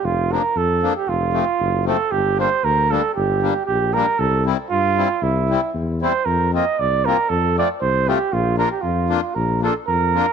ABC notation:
X:1
M:2/4
L:1/16
Q:"Swing" 1/4=116
K:Bb
V:1 name="Flugelhorn"
F2 B2 A3 G | F6 A2 | G2 c2 B2 A2 | G4 G2 B2 |
A2 z2 F4 | =E4 z2 c2 | B2 e2 d2 B2 | A2 d2 c2 G2 |
F2 B G F3 F | B2 A2 B4 |]
V:2 name="Accordion"
z2 [F,B,D]2 z2 [F,B,D]2 | z2 [F,A,C]2 z2 [F,A,C]2 | z2 [G,B,D]2 z2 [G,B,D]2 | z2 [G,B,D]2 z2 [G,B,D]2 |
z2 [G,C=E]2 z2 [G,CE]2 | z2 [G,C=E]2 z2 [G,CE]2 | z2 [B,CF]2 z2 [B,CF]2 | z2 [A,CF]2 z2 [A,CF]2 |
z2 [B,DF]2 z2 [B,DF]2 | z2 [B,DF]2 z2 [B,DF]2 |]
V:3 name="Tuba" clef=bass
F,,,4 F,,4 | F,,,4 _G,,,4 | G,,,4 D,,4 | G,,,4 B,,,4 |
C,,4 G,,4 | C,,4 =E,,4 | F,,4 C,,4 | F,,4 C,,4 |
B,,,4 F,,4 | B,,,4 F,,4 |]